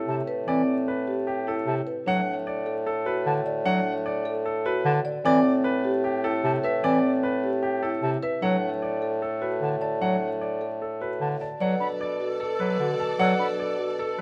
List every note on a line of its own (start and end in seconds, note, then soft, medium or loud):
0.00 1.95 A2 medium
0.00 0.14 E4 medium
0.00 0.14 A4 medium
0.08 0.23 C3 medium
0.08 0.15 A5 medium
0.28 0.54 B4 medium
0.47 0.62 E3 medium
0.47 0.74 C4 medium
0.47 0.74 D5 medium
0.88 1.14 B4 medium
1.07 1.33 G4 medium
1.27 1.53 G4 medium
1.47 1.73 E4 medium
1.47 1.73 A4 medium
1.67 1.82 C3 medium
1.67 1.74 A5 medium
1.87 2.13 B4 medium
2.06 5.13 A2 medium
2.06 2.22 F#3 medium
2.06 2.33 D4 medium
2.06 2.33 F#5 medium
2.47 2.73 D5 medium
2.66 2.92 A4 medium
2.86 3.12 A4 medium
3.06 3.32 F#4 medium
3.06 3.32 B4 medium
3.26 3.41 D3 medium
3.26 3.34 A5 medium
3.46 3.72 D5 medium
3.65 3.80 F#3 medium
3.65 3.92 D4 medium
3.65 3.92 F#5 medium
4.06 4.31 D5 medium
4.25 4.51 A4 medium
4.46 4.71 A4 medium
4.65 4.91 F#4 medium
4.65 4.91 B4 medium
4.85 5.00 D3 medium
4.85 4.93 A5 medium
5.05 5.31 D5 medium
5.24 8.31 A2 medium
5.24 5.40 E3 medium
5.24 5.51 C4 medium
5.24 5.51 D5 medium
5.64 5.90 B4 medium
5.84 6.10 G4 medium
6.04 6.30 G4 medium
6.24 6.50 E4 medium
6.24 6.50 A4 medium
6.44 6.59 C3 medium
6.44 6.52 A5 medium
6.64 6.90 B4 medium
6.64 6.90 E5 medium
6.84 6.99 E3 medium
6.84 7.09 C4 medium
6.84 7.10 D5 medium
7.23 7.49 B4 medium
7.44 7.69 G4 medium
7.63 7.89 G4 medium
7.83 8.09 E4 medium
7.83 8.09 A4 medium
8.02 8.17 C3 medium
8.02 8.10 A5 medium
8.23 8.49 B4 medium
8.23 8.49 E5 medium
8.42 11.48 A2 medium
8.42 8.57 F#3 medium
8.42 8.68 D4 medium
8.42 8.68 F#5 medium
8.82 9.08 D5 medium
9.02 9.28 A4 medium
9.22 9.48 A4 medium
9.42 9.68 F#4 medium
9.42 9.68 B4 medium
9.61 9.76 D3 medium
9.61 9.69 A5 soft
9.81 10.07 D5 medium
9.81 10.07 A5 soft
10.01 10.16 F#3 medium
10.01 10.27 D4 medium
10.01 10.27 F#5 medium
10.41 10.67 D5 soft
10.61 10.87 A4 medium
10.82 11.07 A4 soft
11.01 11.27 F#4 soft
11.01 11.27 B4 medium
11.21 11.36 D3 medium
11.21 11.28 A5 soft
11.41 11.59 D5 medium
11.41 11.67 A5 soft
11.60 14.21 B2 medium
11.60 11.76 F#3 medium
11.60 14.21 A4 medium
11.60 11.86 D5 medium
11.60 14.21 D5 medium
11.60 11.87 F#5 medium
11.80 12.06 D4 medium
11.80 11.88 B5 medium
12.01 12.26 D5 medium
12.20 12.46 F#4 medium
12.40 12.66 A4 medium
12.60 12.75 F#3 medium
12.60 12.86 B4 medium
12.80 12.95 D3 medium
12.80 13.06 F#4 medium
12.99 13.07 A5 medium
12.99 13.25 A5 medium
13.19 13.34 F#3 medium
13.19 13.45 D5 medium
13.19 13.45 F#5 medium
13.39 13.65 D4 medium
13.39 13.47 B5 medium
13.60 13.85 D5 medium
13.78 14.05 F#4 medium
13.99 14.21 A4 medium
14.18 14.21 B4 medium